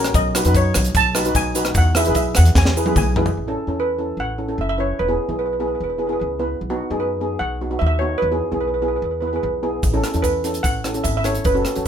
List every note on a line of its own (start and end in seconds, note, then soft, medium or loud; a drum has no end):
0.00 0.14 C#4 medium
0.00 0.14 F#4 medium
0.00 0.14 A#4 medium
0.04 cross-stick medium
0.04 closed hi-hat medium
0.14 0.46 B1 medium
0.14 0.56 D#5 medium
0.14 kick loud
0.14 closed hi-hat medium
0.14 shaker medium
0.35 0.41 D#4 medium
0.35 0.41 F#4 medium
0.35 0.41 B4 medium
0.35 cross-stick medium
0.35 closed hi-hat medium
0.35 shaker loud
0.45 0.71 F#2 medium
0.45 0.88 D#4 medium
0.45 0.88 F#4 medium
0.45 0.88 B4 medium
0.45 closed hi-hat medium
0.55 0.97 C#5 medium
0.55 kick medium
0.55 closed hi-hat medium
0.55 shaker medium
0.74 0.93 B1 loud
0.74 cross-stick medium
0.74 closed hi-hat medium
0.74 shaker loud
0.85 closed hi-hat medium
0.95 1.29 B1 loud
0.95 1.33 A5 medium
0.95 kick loud
0.95 closed hi-hat medium
0.95 shaker medium
1.15 1.21 D#4 medium
1.15 1.21 F#4 medium
1.15 1.21 B4 medium
1.15 cross-stick medium
1.15 closed hi-hat medium
1.15 shaker loud
1.25 1.44 D#4 medium
1.25 1.43 F#4 medium
1.25 1.44 B4 medium
1.25 closed hi-hat medium
1.35 1.69 B1 medium
1.35 1.77 G#5 medium
1.35 kick medium
1.35 closed hi-hat medium
1.35 shaker loud
1.55 1.75 D#4 medium
1.55 1.76 F#4 medium
1.55 1.76 B4 medium
1.55 closed hi-hat medium
1.55 shaker loud
1.65 cross-stick medium
1.65 closed hi-hat medium
1.74 2.09 E2 loud
1.74 1.97 F#5 medium
1.74 kick loud
1.74 closed hi-hat medium
1.74 shaker medium
1.95 2.02 E4 medium
1.95 2.02 G#4 medium
1.95 2.02 B4 medium
1.95 2.15 E5 medium
1.95 cross-stick medium
1.95 closed hi-hat medium
1.95 shaker loud
2.05 2.33 B1 medium
2.05 2.48 E4 medium
2.05 2.48 G#4 medium
2.05 2.49 B4 medium
2.05 closed hi-hat medium
2.15 2.35 E5 medium
2.15 kick medium
2.15 closed hi-hat medium
2.15 shaker medium
2.35 2.54 E2 loud
2.35 2.57 F#5 medium
2.35 cross-stick medium
2.35 closed hi-hat medium
2.35 shaker loud
2.45 closed hi-hat medium
2.55 2.90 E2 medium
2.55 2.96 G#5 medium
2.55 kick loud
2.55 snare medium
2.55 shaker medium
2.65 snare medium
2.77 2.83 E4 medium
2.77 2.83 G#4 medium
2.77 2.83 B4 medium
2.77 shaker loud
2.86 3.04 E4 medium
2.86 3.05 G#4 medium
2.86 3.05 B4 medium
2.86 high tom medium
2.96 3.31 B1 medium
2.96 3.25 G#5 medium
2.96 kick medium
2.96 mid tom medium
2.96 shaker medium
3.16 3.37 E4 medium
3.16 3.37 G#4 medium
3.16 3.37 B4 medium
3.16 floor tom medium
3.26 floor tom medium
3.26 shaker soft
3.37 3.54 A1 medium
3.48 3.60 C#4 medium
3.48 3.59 E4 medium
3.48 3.60 A4 medium
3.67 4.11 E2 medium
3.67 3.86 C#4 medium
3.67 3.86 E4 medium
3.67 3.86 A4 medium
3.80 4.16 B4 medium
3.98 4.22 C#4 medium
3.98 4.23 E4 medium
3.98 4.22 A4 medium
4.17 4.52 A1 medium
4.17 4.60 F#5 medium
4.38 4.44 C#4 medium
4.38 4.44 E4 soft
4.38 4.44 A4 medium
4.48 4.66 C#4 medium
4.48 4.67 E4 medium
4.48 4.66 A4 medium
4.58 4.93 F#1 medium
4.58 4.68 E5 medium
4.69 4.79 E5 medium
4.78 4.97 C#4 medium
4.78 4.96 E4 soft
4.78 4.96 B4 medium
4.78 5.00 C#5 medium
4.99 5.16 E1 medium
4.99 5.38 B4 medium
5.08 5.21 B3 medium
5.08 5.21 E4 medium
5.08 5.21 G#4 medium
5.29 5.72 B1 medium
5.29 5.47 B3 medium
5.29 5.47 E4 medium
5.29 5.47 G#4 medium
5.39 5.45 B4 medium
5.46 5.52 B4 soft
5.53 5.59 B4 soft
5.60 5.84 B3 medium
5.60 5.84 E4 medium
5.60 5.84 G#4 medium
5.60 5.66 B4 soft
5.68 5.74 B4 soft
5.75 5.83 B4 soft
5.80 6.15 E1 medium
5.80 5.89 B4 soft
5.90 5.98 B4 soft
5.98 6.05 B3 medium
5.98 6.05 E4 soft
5.98 6.05 G#4 medium
5.98 6.06 B4 soft
6.07 6.28 B3 medium
6.07 6.28 E4 medium
6.07 6.28 G#4 medium
6.07 6.11 B4 soft
6.13 6.19 B4 soft
6.20 6.56 C#2 medium
6.20 6.28 B4 soft
6.39 6.58 B3 medium
6.39 6.58 E4 medium
6.39 6.58 B4 medium
6.61 6.78 B1 medium
6.70 6.83 B3 medium
6.70 6.83 D#4 medium
6.70 6.83 F#4 medium
6.90 7.34 F#2 medium
6.90 7.09 B3 medium
6.90 7.09 D#4 medium
6.90 7.09 G#4 medium
7.00 7.38 B4 medium
7.21 7.46 B3 medium
7.21 7.45 D#4 medium
7.21 7.46 G#4 medium
7.39 7.76 B1 medium
7.39 7.82 F#5 medium
7.61 7.68 B3 soft
7.61 7.68 D#4 soft
7.61 7.68 F#4 medium
7.70 7.90 B3 medium
7.70 7.89 D#4 soft
7.70 7.90 F#4 medium
7.79 8.17 D#2 medium
7.79 7.85 E5 medium
7.87 7.92 E5 medium
7.99 8.20 B3 medium
7.99 8.20 D#4 medium
7.99 8.20 F#4 medium
7.99 8.21 C#5 medium
8.18 8.58 B4 medium
8.22 8.40 E2 medium
8.31 8.44 B3 medium
8.31 8.44 E4 medium
8.31 8.44 G#4 medium
8.52 8.96 B1 medium
8.52 8.70 B3 medium
8.52 8.70 E4 medium
8.52 8.71 G#4 medium
8.61 8.67 B4 medium
8.68 8.73 B4 soft
8.74 8.81 B4 soft
8.82 9.07 B3 medium
8.82 9.07 E4 medium
8.82 9.07 G#4 medium
8.82 8.87 B4 soft
8.88 8.95 B4 soft
8.96 9.03 B4 soft
9.02 9.38 E2 medium
9.02 9.10 B4 soft
9.11 9.19 B4 soft
9.21 9.29 B3 medium
9.21 9.29 E4 medium
9.21 9.26 B4 soft
9.21 9.29 B4 medium
9.28 9.35 B4 soft
9.33 9.52 B3 medium
9.33 9.52 E4 medium
9.33 9.52 G#4 medium
9.33 9.42 B4 soft
9.43 9.78 B1 medium
9.43 9.51 B4 soft
9.63 9.82 B3 medium
9.63 9.82 E4 medium
9.63 9.82 G#4 medium
9.83 10.01 A1 medium
9.83 kick loud
9.83 closed hi-hat medium
9.83 shaker medium
9.93 10.06 C#4 medium
9.93 10.06 E4 medium
9.93 10.06 A4 medium
9.93 shaker soft
10.04 cross-stick medium
10.04 closed hi-hat medium
10.04 shaker medium
10.14 10.58 E2 medium
10.14 10.33 C#4 medium
10.14 10.33 E4 medium
10.14 10.33 A4 medium
10.14 closed hi-hat soft
10.22 10.65 B4 medium
10.22 kick medium
10.22 closed hi-hat medium
10.22 shaker medium
10.44 10.69 C#4 medium
10.44 10.69 E4 medium
10.44 10.69 A4 medium
10.44 closed hi-hat medium
10.44 shaker medium
10.54 closed hi-hat medium
10.54 shaker soft
10.63 10.99 A1 medium
10.63 11.02 F#5 medium
10.63 kick loud
10.63 closed hi-hat medium
10.63 shaker medium
10.84 10.91 C#4 medium
10.84 10.91 E4 medium
10.84 10.92 A4 medium
10.84 cross-stick medium
10.84 closed hi-hat medium
10.84 shaker medium
10.94 11.13 C#4 medium
10.94 11.13 E4 medium
10.94 11.13 A4 medium
10.94 closed hi-hat soft
11.04 11.40 G#1 medium
11.04 11.15 E5 medium
11.04 kick medium
11.04 closed hi-hat medium
11.04 shaker medium
11.17 11.27 E5 medium
11.24 11.43 C#4 medium
11.24 11.43 E4 medium
11.24 11.43 A4 medium
11.24 11.46 C#5 medium
11.24 cross-stick medium
11.24 closed hi-hat medium
11.24 shaker medium
11.35 closed hi-hat soft
11.44 11.63 F#1 medium
11.44 11.83 B4 medium
11.44 kick medium
11.44 closed hi-hat soft
11.44 shaker medium
11.55 11.67 C#4 medium
11.55 11.68 F#4 medium
11.55 11.68 A4 medium
11.55 shaker soft
11.65 cross-stick medium
11.65 closed hi-hat medium
11.65 shaker medium
11.75 11.88 C#2 medium
11.75 11.88 C#4 medium
11.75 11.88 F#4 medium
11.75 11.88 A4 medium
11.75 closed hi-hat soft